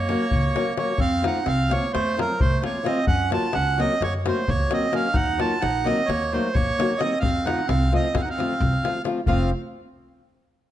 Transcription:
Already playing: F#2 A#3 C#5
0.09 F#3 A#3 C#4 F#4, davul high
0.31 C#2, davul low
0.56 F#3 A#3 C#4 F#4, davul high
0.66 davul high
0.77 F#3 A#3 C#4 F#4 C#5, davul high
0.88 davul high
0.98 F2 C4 F5, davul low
1.22 F3 A3 C4 D#4 F4, davul high
1.27 F#5
1.45 C2 C4 F5, davul high
1.69 F3 A3 A#3 C4 F4 C#5, davul high
1.83 davul high
1.93 F2 A3 C5, davul high
2.07 davul high
2.17 F3 F#3 A3 C4 F4 A#4, davul high
2.40 C2 A3 C5, davul low
2.52 davul high
2.62 F3 A3 A#3 C4 F4 C#5, davul high
2.83 F3 A3 C4 F4 D#5, davul high
3.07 F#2 C#4 F#5, davul low
3.30 F#3 A#3 C#4 F4 F#4 A5, davul high
3.53 C#2 C#4 F#5, davul high
3.78 F#3 A#3 C4 C#4 F#4 D#5, davul high
3.92 davul high
4.00 F#2 A#3 C#5, davul high
4.15 davul high
4.25 F#3 A3 A#3 C#4 F#4 C5, davul high
4.47 C#2 A#3 C#5, davul low
4.60 davul high
4.70 F#3 A#3 C4 C#4 F#4 D#5, davul high
4.92 F#3 A#3 C#4 F#4 F5, davul high
5.13 D#2 D#4 F#5, davul low
5.38 F#3 A#3 D#4 F4 F#4 A5, davul high
5.61 A#1 D#4 F#5, davul high
5.84 F#3 A#3 C4 D#4 F#4 D#5, davul high
5.99 davul high
6.06 D#2 A#3 C#5, davul high
6.23 davul high
6.32 F#3 A3 A#3 D#4 F#4 C5
6.53 A#1 A#3 C#5, davul low
6.67 davul high
6.78 F#3 A#3 D#4 F#4, davul high
6.98 F#3 A#3 C4 D#4 F#4 D#5, davul high
7.20 F2 C4 F5, davul low
7.36 davul high
7.45 F3 A3 C4 D#4 F4 F#5, davul high
7.59 davul high
7.67 C2 C4 F5, davul high
7.82 davul high
7.91 F3 A3 C4 F4 D#5
8.04 davul high
8.14 F2 C4 F5, davul high, davul low
8.22 D#4 F#5
8.29 C4 F5, davul high
8.38 F3 A3 C4 F4, davul high
8.50 davul high
8.60 C2, davul low
8.73 davul high
8.83 F3 A3 C4 F4, davul high
8.95 davul high
9.04 F3 A3 C4 F4, davul high
9.26 F1 F3 A3 C4 F4 F5, davul low

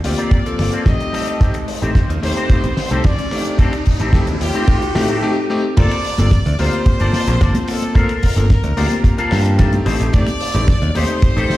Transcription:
Already playing: riser
0.04 D2 A#3 C4 F4 G4 D5, open hi-hat
0.18 A#3 C4 F4 G4, closed hi-hat
0.31 kick, closed hi-hat
0.45 A#3 C4 F4 A4, closed hi-hat
0.58 G1, finger snap, muted clean electric guitar stroke, snare, open hi-hat
0.72 A#3 C4 F4 A4, muted picked electric bass stroke, closed hi-hat
0.86 A#1 A3 C4 D#4 G4 D#5, kick, snare, closed hi-hat
1.00 muted clean electric guitar stroke, closed hi-hat
1.13 C4 G4 A4, finger snap, open hi-hat
1.28 closed hi-hat
1.40 A1 A3 C4 D#4 G4, kick, closed hi-hat
1.54 finger snap, closed hi-hat
1.67 muted clean electric guitar stroke, open hi-hat
1.81 A1 A3 C4 D#4 G4 C5, closed hi-hat
1.95 kick, snare, closed hi-hat
2.10 D#2, closed hi-hat
2.22 D#2 A3 C4 D#4 G4 C5, open hi-hat
2.36 C4 G4 C5, closed hi-hat
2.49 A3 C4 D#4 G4, muted picked electric bass stroke, kick, closed hi-hat
2.64 A1, closed hi-hat
2.76 muted clean electric guitar stroke, snare, open hi-hat
2.90 C2 A3 C4 D#4 G4 A4, closed hi-hat
3.04 A1 D5, kick, snare, closed hi-hat
3.18 muted clean electric guitar stroke, closed hi-hat
3.31 A3 C4 D#4 G4, finger snap, open hi-hat
3.45 closed hi-hat
3.58 A3 C4 D#4 G4 A4, kick, closed hi-hat
3.73 finger snap, closed hi-hat
3.85 muted clean electric guitar stroke, kick, open hi-hat
3.99 A1 A3 C4 D#4 G4 A4, closed hi-hat
4.13 A3 C4 D#4 G4, kick, snare, closed hi-hat
4.27 D#2, closed hi-hat
4.41 D#2 G4, open hi-hat
4.54 A3 C4 D#4 G4 C5, closed hi-hat
4.67 A3 C4 D#4 G4, kick, closed hi-hat
4.82 closed hi-hat
4.95 A2 A3 C4 D#4 G4, finger snap, muted clean electric guitar stroke, snare, open hi-hat
5.08 C4 G4 A4, closed hi-hat
5.22 A3 C4 D#4 G4
5.50 A3 C4 D#4 G4
5.76 G1 A#3 C4 F4 A4 A#4 C5 D5, kick, closed hi-hat, crash, muted conga, high conga
5.92 finger snap, closed hi-hat
6.05 open hi-hat
6.18 G1 A#3 C4 F4 A4, closed hi-hat, muted conga, high conga
6.31 kick, snare, closed hi-hat
6.46 D2, closed hi-hat, muted conga, low conga
6.58 D2 A#3 C4 F4 G4 A4 A#4 C5, open hi-hat, high conga
6.73 closed hi-hat
6.86 muted picked electric bass stroke, kick, closed hi-hat, muted conga
7.00 G1 A#3 C4 F4 A4 A#4 D5 A5, closed hi-hat
7.13 snare, open hi-hat, muted conga, high conga
7.28 A#1, closed hi-hat
7.40 G1 A#3 C4 F4 A4 A#4 D5 A5, kick, snare, closed hi-hat
7.54 closed hi-hat, muted conga, high conga
7.67 A4, finger snap, muted clean electric guitar stroke, open hi-hat
7.82 closed hi-hat, muted conga
7.94 A#3 C4 F4 A4 A#4 C5, kick, closed hi-hat, high conga
8.09 finger snap, closed hi-hat
8.23 kick, open hi-hat, muted conga
8.36 G1 A#3 C4 F4 A4, closed hi-hat, high conga
8.50 kick, snare, closed hi-hat, muted conga
8.64 D2, closed hi-hat, low conga
8.76 D2 A#3 C4 F4 G4 A4 A#4 C5, open hi-hat, high conga
8.91 closed hi-hat, muted conga
9.04 kick, closed hi-hat
9.17 A#3 C4 F4 A4 A#4 C5 A5, closed hi-hat, muted conga
9.31 G2 A5, finger snap, snare, open hi-hat, high conga
9.46 closed hi-hat
9.58 A3 C4 D#4 F4 G4 A4 A#4 C5 G5, kick, snare, closed hi-hat, muted conga
9.73 closed hi-hat, high conga
9.85 A1 D#4 G4 A4 C5 D#5, finger snap, open hi-hat, muted conga
10.00 A1, closed hi-hat
10.13 A1 A3 C4 D#4 G4 D5, kick, closed hi-hat, high conga
10.27 finger snap, closed hi-hat, muted conga
10.41 open hi-hat
10.54 A1 A3 C4 D#4 G4, closed hi-hat, muted conga, high conga
10.68 kick, snare, closed hi-hat
10.82 D#2, closed hi-hat, low conga
10.95 D#2 A3 C4 D#4 G4 A4 C5 D#5, open hi-hat, muted conga, high conga
11.08 closed hi-hat
11.22 muted picked electric bass stroke, kick, closed hi-hat, muted conga
11.36 A1 A3 C4 D#4 G4 A4 C5, closed hi-hat
11.50 snare, open hi-hat, high conga

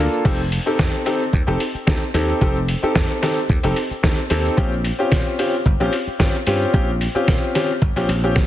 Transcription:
Already playing: A#3 D4
0.00 F4 A4
0.12 cabasa
0.25 F1 C4 D#4 G4 A4, kick, crash, cabasa
0.39 cabasa
0.52 open hi-hat, cabasa
0.66 C4 D#4 G4 A4, cabasa
0.79 F2, kick, snare, cabasa
0.94 cabasa
1.06 C4 D#4 G4 A4, open hi-hat, cabasa
1.21 cabasa
1.33 D#2, kick, cabasa
1.47 F1 C4 D#4 G4 A4, cabasa
1.60 open hi-hat, cabasa
1.75 muted slap bass stroke, cabasa
1.87 D2 C4 D#4 G4 A4, kick, snare, cabasa
2.02 cabasa
2.14 D#2 C4 D#4 G4 A4, open hi-hat, cabasa
2.29 cabasa
2.41 F1 C4 D#4 G4 A4, kick, cabasa
2.56 cabasa
2.68 open hi-hat, cabasa
2.83 C4 D#4 G4 A4, muted slap bass stroke, cabasa
2.95 F2, kick, snare, cabasa
3.10 cabasa
3.22 C4 D#4 G4 A4, snare, open hi-hat, cabasa
3.37 cabasa
3.49 D#2, kick, cabasa
3.63 F1 C4 D#4 G4 A4, open hi-hat, cabasa
3.76 open hi-hat, cabasa
3.91 muted slap bass stroke, cabasa
4.03 D2 C4 D#4 G4 A4, kick, snare, cabasa
4.18 cabasa
4.30 D#2 C4 D#4 G4 A4, open hi-hat, cabasa
4.45 cabasa
4.57 A#1 C4 C#4 F4 G4, kick, cabasa
4.72 cabasa
4.84 open hi-hat, cabasa
4.99 C4 C#4 F4 G4, cabasa
5.12 A#2, kick, snare, cabasa
5.26 cabasa
5.39 C4 C#4 F4 G4, open hi-hat, cabasa
5.53 cabasa
5.66 G1, kick, cabasa
5.80 A#1 C4 C#4 F4 G4, cabasa
5.93 open hi-hat, cabasa
6.07 muted slap bass stroke, cabasa
6.19 G2 C4 C#4 F4 G4, kick, snare, cabasa
6.34 cabasa
6.47 G2 C4 C#4 F4 G4, open hi-hat, cabasa
6.61 cabasa
6.73 A#1 C4 C#4 F4 G4, kick, cabasa
6.88 cabasa
7.01 open hi-hat, cabasa
7.15 C4 C#4 F4 G4, muted slap bass stroke, cabasa
7.28 A#2, kick, snare, cabasa
7.43 cabasa
7.55 C4 C#4 F4 G4, snare, open hi-hat, cabasa
7.70 cabasa
7.82 G1, kick, cabasa
7.96 A#1 C4 C#4 F4 G4, open hi-hat, cabasa
8.08 A#1, open hi-hat, cabasa
8.24 C4 C#4 F4 G4, cabasa
8.36 kick, snare, cabasa

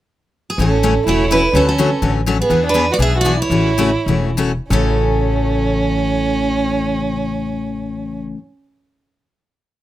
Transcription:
0.50 G#4
0.58 A1 C#3 E3 A3 C#4 F#4 A4
0.83 C#3 E3 A3 C#4 F#4
1.07 E1 C#3 E3 A3 C#4 E4 F#4 C#5
1.30 C#3 E3 A3 C#4 E4 F#4 B4
1.53 D2 D3 F#3 A3 C#4 F#4 A4
1.68 C#4 A4
1.78 D3 F#3 A3 C#4 F#4
2.02 A1 D3 F#3 A3 C#4 F#4
2.26 D3 F#3 A3 C#4 F#4
2.39 B3 G#4
2.50 E2 E3 B3 D4 G#4
2.66 D4 B4
2.74 E3 B3 D4 G#4
2.92 F#4 D5
2.98 B1 E3 B3 D4 G#4 E5
3.18 F#4 D5
3.25 E3 B3 D4 G#4
3.40 E4 C#5
3.50 A1 C#3 E3 A3 C#4 F#4
3.78 C#3 E3 A3 C#4 F#4
4.06 E1 C#3 E3 A3 C#4 F#4
4.37 C#3 E3 A3 C#4 F#4
4.70 A1 A2 C#3 E3 A3 C#4 F#4 A4

